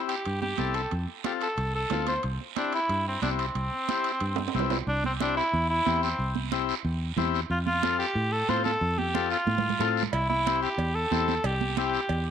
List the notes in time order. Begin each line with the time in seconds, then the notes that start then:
Already playing: C4 E4 G4
0.08 G4, high timbale, short guiro
0.25 G2, high timbale, long guiro
0.41 G4, high conga
0.58 C2 C4 E4 A4, high conga, high timbale, short guiro
0.74 A4, high timbale, short guiro
0.91 F2, high conga, high timbale, long guiro
1.08 high conga
1.24 C4 F4 G4 A4, high conga, high timbale, short guiro
1.40 A4, high timbale, short guiro
1.57 C2, high timbale, long guiro
1.75 A4
1.90 D2 C4 F4 A4, high conga, high timbale, low timbale, short guiro
2.07 C5, high conga, high timbale, short guiro
2.23 C2, high conga, high timbale, long guiro
2.40 high conga
2.56 C4 D4 E4 G4, high conga, high timbale, short guiro
2.73 E4, high timbale, short guiro
2.89 G2, high timbale, long guiro
3.08 C4
3.22 C2 C4 D4 E4 G4, high conga, high timbale, short guiro
3.39 C4, high timbale, short guiro
3.55 C2, high conga, high timbale, long guiro
3.73 high conga
3.89 C4 E4 G4, high conga, high timbale, short guiro
4.04 high timbale, short guiro
4.20 G2, high timbale, long guiro
4.36 high conga, high timbale
4.48 high timbale
4.54 C2 C4 E4 G4, high conga, short guiro
4.59 low timbale
4.70 high conga, low timbale, short guiro
4.87 C2 D4, high conga, long guiro
5.04 C4, high conga
5.20 C4 D4 E4 G4, high conga, short guiro
5.37 E4, short guiro
5.53 E2, high conga, long guiro
5.70 E4
5.86 E2 C4 E4 G4, high conga, short guiro
6.03 C4, short guiro
6.19 C2, high conga, long guiro
6.35 high conga
6.52 C4 E4 G4, high conga, short guiro
6.69 short guiro
6.84 E2, high conga, long guiro
7.16 E2 C4 E4 G4, high conga, low conga, short guiro
7.34 short guiro
7.50 F2 F4, high conga, long guiro
7.66 F4, high conga
7.83 C4 F4 A4, high conga, short guiro
7.99 G4, short guiro
8.15 A2, high conga, long guiro
8.32 A4
8.48 A2 C4 F4 A4 C5, high conga, short guiro
8.64 A4, high conga, short guiro
8.81 F2, high conga, long guiro
8.98 G4, high conga
9.14 C4 F4 A4, high conga, short guiro
9.30 F4, short guiro
9.47 A2, high conga, long guiro
9.58 low conga
9.69 low conga
9.79 A2 C4 F4 A4, low conga, short guiro
9.97 short guiro
10.03 low conga
10.12 C2 E4, cowbell, high conga, long guiro
10.29 E4, high conga
10.46 C4 E4 G4, high conga, short guiro
10.62 G4, short guiro
10.78 E2, cowbell, high conga, long guiro
10.95 A4
11.11 E2 C4 E4 G4, high conga, short guiro
11.28 high conga, short guiro
11.44 C2 G4, cowbell, long guiro
11.61 high conga
11.77 C4 E4 G4, high conga, short guiro
11.93 short guiro
12.09 E2, cowbell, high conga, long guiro